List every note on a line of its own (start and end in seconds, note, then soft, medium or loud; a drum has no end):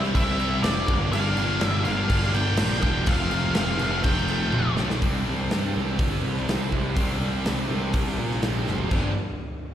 0.00 0.14 C2 medium
0.00 0.14 C3 loud
0.00 0.15 G3 medium
0.00 0.15 C4 medium
0.00 0.16 E4 medium
0.00 snare soft
0.15 0.62 C2 loud
0.15 0.40 C3 medium
0.15 0.40 G3 medium
0.15 0.38 C4 medium
0.15 0.38 E4 medium
0.15 0.63 E5 loud
0.15 kick loud
0.15 crash loud
0.39 0.62 C3 medium
0.39 0.64 G3 medium
0.39 0.64 C4 medium
0.39 0.65 E4 loud
0.39 crash medium
0.63 0.87 F1 loud
0.63 0.87 C3 medium
0.63 0.90 G3 medium
0.63 0.88 C4 medium
0.63 0.88 E4 medium
0.63 0.97 D5 loud
0.63 snare loud
0.63 crash medium
0.88 1.12 G1 loud
0.88 1.12 G2 medium
0.88 1.13 D3 medium
0.88 1.14 G3 loud
0.88 1.13 A#3 medium
0.88 1.15 D4 loud
0.88 kick loud
0.88 crash medium
1.13 1.36 G1 loud
1.13 1.60 G2 medium
1.13 1.61 D3 medium
1.13 1.39 G3 loud
1.13 1.38 A#3 loud
1.13 1.36 D4 loud
1.13 1.65 F5 loud
1.13 crash medium
1.37 1.60 G1 medium
1.37 1.62 G3 medium
1.37 1.63 A#3 medium
1.37 1.63 D4 medium
1.37 crash medium
1.61 1.85 G1 loud
1.61 2.10 G2 loud
1.61 2.07 D3 loud
1.61 1.87 G3 loud
1.61 1.84 A#3 loud
1.61 1.83 D4 loud
1.61 1.84 E5 loud
1.61 snare loud
1.61 crash medium
1.84 2.10 G1 loud
1.84 2.09 G3 medium
1.84 2.09 A#3 medium
1.84 2.09 D4 medium
1.84 2.30 F5 loud
1.84 crash medium
2.09 2.34 G1 loud
2.09 2.58 G2 loud
2.09 2.34 D3 medium
2.09 2.35 G3 medium
2.09 2.33 A#3 medium
2.09 2.33 D4 medium
2.09 kick medium
2.09 crash loud
2.22 snare soft
2.34 2.58 G1 loud
2.34 2.84 G2 medium
2.34 2.58 D3 medium
2.34 2.59 G3 medium
2.34 2.59 A#3 medium
2.34 2.60 D4 loud
2.34 2.82 G5 loud
2.34 crash medium
2.57 2.82 A#1 loud
2.57 3.06 D3 medium
2.57 2.85 G3 medium
2.57 2.83 A#3 medium
2.57 snare loud
2.57 crash loud
2.62 2.82 D4 medium
2.82 3.06 E1 loud
2.82 3.09 G3 medium
2.82 3.06 A#3 medium
2.82 3.05 D4 medium
2.82 3.08 G5 loud
2.82 kick medium
2.82 crash medium
3.06 3.31 F1 loud
3.06 3.54 F2 medium
3.06 3.55 C3 loud
3.06 3.34 F3 loud
3.06 3.32 A3 loud
3.06 3.54 F5 loud
3.06 kick loud
3.06 crash loud
3.11 3.31 C4 loud
3.31 3.56 F1 medium
3.31 3.57 A3 medium
3.31 3.57 C4 medium
3.31 crash medium
3.35 3.55 F3 medium
3.55 3.80 F1 medium
3.55 4.04 F2 loud
3.55 4.04 C3 loud
3.55 3.81 F3 loud
3.55 3.80 A3 loud
3.55 3.79 C4 loud
3.55 4.00 F5 loud
3.55 snare loud
3.55 crash loud
3.79 4.04 F1 loud
3.79 4.04 F3 medium
3.79 4.06 A3 medium
3.79 4.06 C4 medium
3.79 crash medium
4.04 4.51 F1 loud
4.04 4.53 F2 loud
4.04 4.30 C3 medium
4.04 4.29 F3 medium
4.04 4.28 A3 medium
4.04 4.27 C4 medium
4.04 4.73 G5 loud
4.04 kick loud
4.04 crash medium
4.17 snare soft
4.28 4.78 F2 medium
4.28 4.51 C3 medium
4.28 4.51 F3 medium
4.28 4.52 A3 loud
4.28 4.53 C4 medium
4.28 crash medium
4.52 4.77 F1 loud
4.52 4.99 C3 medium
4.52 4.76 F3 medium
4.52 4.76 A3 medium
4.52 4.75 C4 medium
4.52 high tom medium
4.76 5.02 B1 loud
4.76 5.00 F3 medium
4.76 5.00 A3 medium
4.76 4.99 C4 medium
4.76 snare medium
4.90 snare medium
5.00 5.23 C2 medium
5.00 5.75 C3 medium
5.00 5.75 G3 medium
5.00 5.73 C4 medium
5.00 kick loud
5.00 open hi-hat medium
5.28 5.48 C2 medium
5.51 5.72 G2 medium
5.51 snare loud
5.51 open hi-hat medium
5.74 5.97 C2 medium
5.74 6.46 C3 medium
5.74 6.48 G3 medium
5.74 6.46 C4 medium
5.99 6.20 G1 medium
5.99 kick loud
5.99 open hi-hat medium
6.24 6.45 C2 medium
6.37 snare soft
6.47 6.69 C2 medium
6.47 6.95 C3 medium
6.47 6.98 G3 medium
6.47 6.96 C4 medium
6.47 snare loud
6.47 open hi-hat medium
6.72 6.93 C2 medium
6.72 kick medium
6.97 7.18 C2 loud
6.97 7.68 C3 medium
6.97 7.69 G3 medium
6.97 7.67 C4 medium
6.97 kick loud
6.97 open hi-hat medium
7.20 7.41 C2 medium
7.44 7.66 C2 medium
7.44 snare loud
7.44 open hi-hat medium
7.68 7.91 C2 medium
7.68 8.40 C3 medium
7.68 8.41 G3 medium
7.68 8.41 C4 medium
7.93 8.15 C2 medium
7.93 kick loud
7.93 open hi-hat medium
8.18 8.39 A#2 loud
8.31 snare soft
8.41 8.63 A#1 medium
8.41 8.90 C3 medium
8.41 8.90 G3 medium
8.41 8.91 C4 medium
8.41 snare loud
8.41 open hi-hat medium
8.67 8.88 F#1 loud
8.67 snare medium
8.78 floor tom medium
8.91 9.14 G1 medium
8.91 9.11 G2 medium
8.91 9.11 D3 medium
8.91 9.12 G3 loud
8.91 kick loud
8.91 crash medium